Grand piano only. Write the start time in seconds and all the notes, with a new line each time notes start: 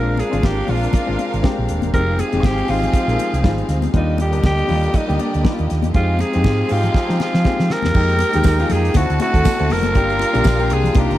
Already playing: G#3 C4 D4 F4
0.30 G#3 C4 D4 F4
0.66 G#3 C4 D4 F4
1.06 G#3 C4 D4 F4
1.42 G#3 C4 D4 G4
1.93 G#3 C4 D#4 G4
2.33 G#3 C4 D#4 G4
2.68 G#3 C4 D#4 G4
3.07 G#3 C4 D#4 A#4
3.43 G3 C4 D#4 F4
3.49 G#3
3.94 G3 A#3 D4 F4
4.31 G3 A#3 D4 G4
4.67 G3 A#3 D4 F4
5.07 G3 A#3 D4 G4
5.43 D3 G3 A#3 D#4
5.50 F4
5.94 G#3 C4 D#4 G4
6.33 G#3 C4 D#4 G4
6.69 G#3 C4 D#4 G4
7.07 G#3 C4 D#4 G4
7.44 G#3 C4 D#4 G4
7.94 G#3 A#3 D#4 G4
8.33 G#3 A#3 D#4 G4
8.59 G#3 A#3 D#4 F4
8.95 A3 C4 E4 F#4
9.20 A3 C4 E4 F#4
9.59 A3 C4 E4 F#4
9.95 A#3 D4 F4 G4
10.33 A#3 D4 F4 G4
10.59 A#3 D4 F4 G4
10.95 A#3 D4 D#4 F4